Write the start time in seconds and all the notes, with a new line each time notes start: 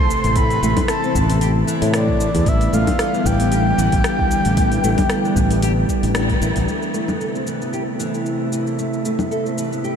Already playing: C3 E3 A3 C4 E4 A4 C6
0.10 E3, shaker
0.24 A1, open hi-hat, shaker
0.35 A3 C4 E4 A4 B5, kick, open hi-hat, shaker
0.50 open hi-hat, shaker
0.62 A1 A3, shaker
0.77 B3 E4 A4, kick, open hi-hat, low conga, shaker
0.88 A4 A5, cross-stick, open hi-hat, shaker
1.04 C4, shaker
1.15 A1 E3, udu, shaker
1.30 B3, open hi-hat, shaker
1.41 G4, open hi-hat, shaker
1.67 E3, shaker
1.82 A2, open hi-hat, shaker
1.94 D5, cross-stick, open hi-hat, shaker
2.08 kick
2.20 E3, shaker
2.35 E2, open hi-hat, udu, shaker
2.45 A1 D3 G3 A3 B3 D4 E4 B4 E5, kick, open hi-hat, shaker
2.61 open hi-hat, shaker
2.73 A1 A3 F5, shaker
2.86 E3 G3 B3 D4 B4, kick, open hi-hat, low conga, shaker
2.99 A4, cross-stick, open hi-hat, shaker
3.14 B3, shaker
3.25 A1 E3 G5, udu, shaker
3.40 B3, open hi-hat, shaker
3.52 G4, open hi-hat, shaker
3.78 A1 E3, shaker
3.92 A1, kick, open hi-hat, shaker
4.04 cross-stick, open hi-hat, shaker
4.19 kick, udu
4.31 E3, shaker
4.45 A1, open hi-hat, shaker
4.57 G3 A3 B3 D4 E4 B4, kick, open hi-hat, shaker
4.72 open hi-hat, shaker
4.83 A1 A3, shaker
4.96 G3 B3 D4 E4, kick, open hi-hat, low conga, shaker
5.09 A4, cross-stick, open hi-hat, shaker
5.25 B3, shaker
5.36 A1 E3, udu, shaker
5.50 B3, open hi-hat, shaker
5.62 G4, open hi-hat, shaker
5.89 G3, kick, shaker
6.03 A1, open hi-hat, shaker
6.14 G3 B3 D4 E4 B4, cross-stick, open hi-hat, shaker
6.30 kick, open hi-hat
6.41 A1 E4, shaker
6.56 A1, open hi-hat, udu, shaker
6.67 C3 A3 E4 A4 E5, shaker
6.83 shaker
6.94 A3, shaker
7.08 B3, low conga, shaker
7.20 A4, shaker
7.35 C4, shaker
7.47 E3, shaker
7.61 B3, shaker
7.73 G4, shaker
7.99 E3, shaker
8.14 shaker
8.26 shaker
8.52 E3, shaker
8.67 shaker
8.79 A3, shaker
8.93 shaker
9.05 A3, shaker
9.19 B3, low conga, shaker
9.31 A4, shaker
9.46 C4, shaker
9.58 E3, shaker
9.73 B3, shaker
9.84 G4, shaker